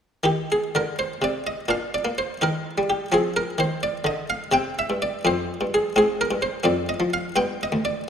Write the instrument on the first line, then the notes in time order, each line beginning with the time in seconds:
harpsichord
0.23 D#3 D#4 G4
0.52 G#4
0.75 D3 A#4
0.99 C5
1.22 C3 D5
1.47 D#5
1.68 A#2 D4 F5
1.94 D5
2.05 A#3
2.18 C5
2.41 D#3 D#4 A#4
2.78 G3
2.90 G4
3.12 F3 C4 G#4
3.36 A#4
3.58 D#3 C5
3.83 D5
4.04 D3 D#5
4.30 F5
4.52 C3 C4 G5
4.79 E5
4.90 G2
5.02 D5
5.25 F2 C4 C5
5.61 G2
5.74 G#4
5.96 G#2 C4 G#4
6.21 A#4
6.31 G2
6.42 C5
6.63 F2 C4 D5
6.89 D#5
7.00 F3
7.14 F5
7.36 G2 B3 G5
7.63 D#5
7.72 D2
7.85 D5